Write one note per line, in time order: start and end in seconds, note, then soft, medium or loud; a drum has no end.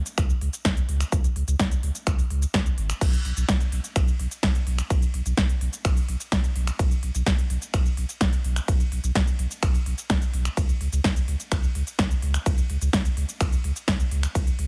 0.06 closed hi-hat medium
0.06 cabasa medium
0.18 0.32 C#2 loud
0.18 finger snap medium
0.18 kick loud
0.18 closed hi-hat medium
0.18 cabasa medium
0.30 cabasa soft
0.41 0.49 C#2 medium
0.41 open hi-hat loud
0.53 closed hi-hat medium
0.53 cabasa medium
0.65 0.80 C#2 loud
0.65 finger snap medium
0.65 kick loud
0.65 snare loud
0.65 closed hi-hat medium
0.65 cabasa medium
0.77 closed hi-hat soft
0.77 cabasa soft
0.89 1.03 C#2 loud
0.89 open hi-hat loud
1.01 finger snap medium
1.01 closed hi-hat medium
1.01 cabasa medium
1.12 1.27 C#2 loud
1.12 kick loud
1.12 closed hi-hat medium
1.12 cabasa medium
1.24 closed hi-hat soft
1.24 cabasa soft
1.36 1.43 C#2 medium
1.36 open hi-hat loud
1.48 1.55 C#2 medium
1.48 closed hi-hat medium
1.48 cabasa medium
1.59 1.74 C#2 medium
1.59 kick loud
1.59 snare loud
1.59 closed hi-hat medium
1.59 cabasa medium
1.71 closed hi-hat soft
1.71 cabasa soft
1.83 1.90 C#2 medium
1.83 open hi-hat loud
1.95 closed hi-hat medium
1.95 cabasa medium
2.07 2.21 C#2 loud
2.07 finger snap medium
2.07 kick loud
2.07 closed hi-hat medium
2.07 cabasa medium
2.19 open hi-hat medium
2.19 cabasa soft
2.30 2.45 C#2 medium
2.30 open hi-hat loud
2.42 closed hi-hat medium
2.42 cabasa medium
2.54 2.69 C#2 loud
2.54 finger snap medium
2.54 kick loud
2.54 snare loud
2.54 closed hi-hat medium
2.54 cabasa medium
2.66 closed hi-hat soft
2.66 cabasa soft
2.78 2.92 G#1 loud
2.78 open hi-hat loud
2.90 finger snap medium
2.90 closed hi-hat medium
2.90 cabasa medium
3.01 3.16 B1 loud
3.01 kick loud
3.01 closed hi-hat medium
3.01 ride medium
3.01 crash medium
3.01 cabasa medium
3.13 closed hi-hat soft
3.13 cabasa soft
3.25 3.32 B1 medium
3.25 open hi-hat loud
3.37 3.44 B1 medium
3.37 closed hi-hat medium
3.37 cabasa medium
3.49 3.63 B1 medium
3.49 kick loud
3.49 snare loud
3.49 closed hi-hat medium
3.49 ride medium
3.49 cabasa medium
3.60 closed hi-hat soft
3.60 cabasa soft
3.72 3.79 B1 medium
3.72 open hi-hat loud
3.84 closed hi-hat medium
3.84 cabasa medium
3.96 4.10 B1 loud
3.96 finger snap medium
3.96 kick loud
3.96 closed hi-hat medium
3.96 ride medium
3.96 cabasa medium
4.08 cabasa soft
4.19 4.27 B1 loud
4.19 open hi-hat loud
4.31 closed hi-hat medium
4.31 cabasa medium
4.43 4.58 B1 loud
4.43 finger snap medium
4.43 kick loud
4.43 snare loud
4.43 closed hi-hat medium
4.43 ride medium
4.43 cabasa medium
4.55 closed hi-hat soft
4.55 cabasa soft
4.67 4.81 B1 loud
4.67 open hi-hat loud
4.79 finger snap medium
4.79 closed hi-hat medium
4.79 cabasa medium
4.90 5.05 B1 loud
4.90 kick loud
4.90 closed hi-hat medium
4.90 ride medium
4.90 cabasa medium
5.02 closed hi-hat soft
5.02 cabasa soft
5.14 5.21 B1 medium
5.14 open hi-hat loud
5.26 5.33 B1 medium
5.26 closed hi-hat medium
5.26 cabasa medium
5.37 5.52 B1 medium
5.37 kick loud
5.37 snare loud
5.37 closed hi-hat medium
5.37 ride medium
5.37 cabasa medium
5.49 closed hi-hat soft
5.49 cabasa soft
5.61 5.69 B1 medium
5.61 open hi-hat loud
5.73 closed hi-hat medium
5.73 cabasa medium
5.85 5.99 B1 loud
5.85 finger snap medium
5.85 kick loud
5.85 closed hi-hat medium
5.85 ride medium
5.85 cabasa medium
5.97 open hi-hat medium
5.97 cabasa soft
6.08 6.16 B1 loud
6.08 open hi-hat loud
6.20 closed hi-hat medium
6.20 cabasa medium
6.32 6.47 B1 loud
6.32 finger snap medium
6.32 kick loud
6.32 snare loud
6.32 closed hi-hat medium
6.32 ride medium
6.32 cabasa medium
6.44 closed hi-hat soft
6.44 cabasa soft
6.56 6.70 B1 loud
6.56 open hi-hat loud
6.67 finger snap medium
6.67 closed hi-hat medium
6.67 cabasa medium
6.79 6.94 B1 loud
6.79 kick loud
6.79 closed hi-hat medium
6.79 ride medium
6.79 cabasa medium
6.91 closed hi-hat soft
6.91 cabasa soft
7.03 7.10 B1 medium
7.03 open hi-hat loud
7.15 7.22 B1 medium
7.15 closed hi-hat medium
7.15 cabasa medium
7.26 7.41 B1 medium
7.26 kick loud
7.26 snare loud
7.26 closed hi-hat medium
7.26 ride medium
7.26 cabasa medium
7.38 closed hi-hat soft
7.38 cabasa soft
7.50 7.57 B1 medium
7.50 open hi-hat loud
7.62 closed hi-hat medium
7.62 cabasa medium
7.74 7.88 B1 loud
7.74 finger snap medium
7.74 kick loud
7.74 closed hi-hat medium
7.74 ride medium
7.74 cabasa medium
7.86 cabasa soft
7.97 8.05 B1 loud
7.97 open hi-hat loud
8.09 closed hi-hat medium
8.09 cabasa medium
8.21 8.36 B1 loud
8.21 finger snap medium
8.21 kick loud
8.21 snare loud
8.21 closed hi-hat medium
8.21 ride medium
8.21 cabasa medium
8.33 closed hi-hat soft
8.33 cabasa soft
8.44 8.59 B1 medium
8.44 open hi-hat loud
8.56 finger snap medium
8.56 closed hi-hat medium
8.56 cabasa medium
8.68 8.83 B1 loud
8.68 kick loud
8.68 closed hi-hat medium
8.68 ride medium
8.68 cabasa medium
8.80 closed hi-hat soft
8.80 cabasa soft
8.92 8.99 B1 medium
8.92 open hi-hat loud
9.04 9.11 B1 medium
9.04 closed hi-hat medium
9.04 cabasa medium
9.15 9.30 B1 medium
9.15 kick loud
9.15 snare loud
9.15 closed hi-hat medium
9.15 ride medium
9.15 cabasa medium
9.27 closed hi-hat soft
9.27 cabasa soft
9.39 9.46 B1 medium
9.39 open hi-hat loud
9.51 closed hi-hat soft
9.51 cabasa medium
9.63 9.77 B1 loud
9.63 finger snap medium
9.63 kick loud
9.63 closed hi-hat medium
9.63 ride medium
9.63 cabasa medium
9.74 open hi-hat medium
9.74 cabasa soft
9.86 9.94 B1 medium
9.86 open hi-hat loud
9.98 closed hi-hat medium
9.98 cabasa medium
10.10 10.17 B1 loud
10.10 finger snap medium
10.10 kick loud
10.10 snare loud
10.10 closed hi-hat medium
10.10 ride medium
10.10 cabasa medium
10.22 closed hi-hat soft
10.22 cabasa soft
10.34 10.48 B1 loud
10.34 open hi-hat loud
10.45 finger snap medium
10.45 closed hi-hat medium
10.45 cabasa medium
10.57 10.72 C#2 loud
10.57 kick loud
10.57 closed hi-hat medium
10.57 ride medium
10.57 cabasa medium
10.69 closed hi-hat soft
10.69 cabasa soft
10.81 10.88 C#2 medium
10.81 open hi-hat loud
10.93 11.00 C#2 medium
10.93 closed hi-hat medium
10.93 cabasa medium
11.04 11.19 C#2 medium
11.04 kick loud
11.04 snare loud
11.04 closed hi-hat medium
11.04 ride medium
11.04 cabasa medium
11.16 closed hi-hat soft
11.16 cabasa soft
11.28 11.35 C#2 medium
11.28 open hi-hat loud
11.40 closed hi-hat medium
11.40 cabasa medium
11.52 11.66 C#2 loud
11.52 finger snap medium
11.52 kick loud
11.52 closed hi-hat medium
11.52 ride medium
11.52 cabasa medium
11.64 cabasa soft
11.75 11.83 C#2 medium
11.75 open hi-hat loud
11.87 closed hi-hat medium
11.87 cabasa medium
11.99 12.14 C#2 loud
11.99 finger snap medium
11.99 kick loud
11.99 snare loud
11.99 closed hi-hat medium
11.99 ride medium
11.99 cabasa medium
12.11 closed hi-hat soft
12.11 cabasa soft
12.22 12.37 C#2 loud
12.22 open hi-hat loud
12.34 finger snap medium
12.34 closed hi-hat medium
12.34 cabasa medium
12.46 12.61 C#2 loud
12.46 kick loud
12.46 closed hi-hat medium
12.46 ride medium
12.46 cabasa medium
12.58 closed hi-hat soft
12.58 cabasa soft
12.70 12.77 C#2 medium
12.70 open hi-hat loud
12.81 12.89 C#2 medium
12.81 closed hi-hat medium
12.81 cabasa medium
12.93 13.08 C#2 medium
12.93 kick loud
12.93 snare loud
12.93 closed hi-hat medium
12.93 ride medium
12.93 cabasa medium
13.05 closed hi-hat soft
13.05 cabasa soft
13.17 13.24 C#2 medium
13.17 open hi-hat loud
13.29 closed hi-hat medium
13.29 cabasa medium
13.41 13.55 C#2 loud
13.41 finger snap medium
13.41 kick loud
13.41 closed hi-hat medium
13.41 ride medium
13.41 cabasa medium
13.52 open hi-hat medium
13.52 cabasa soft
13.64 13.72 C#2 medium
13.64 open hi-hat loud
13.76 closed hi-hat medium
13.76 cabasa medium
13.88 14.03 C#2 loud
13.88 finger snap medium
13.88 kick loud
13.88 snare loud
13.88 closed hi-hat medium
13.88 ride medium
13.88 cabasa medium
14.00 closed hi-hat soft
14.00 cabasa soft
14.11 14.26 C#2 loud
14.11 open hi-hat loud
14.23 finger snap medium
14.23 closed hi-hat medium
14.23 cabasa medium
14.35 14.50 C#2 loud
14.35 kick loud
14.35 closed hi-hat medium
14.35 ride medium
14.35 cabasa medium
14.47 closed hi-hat soft
14.47 cabasa soft
14.59 14.66 C#2 medium
14.59 open hi-hat loud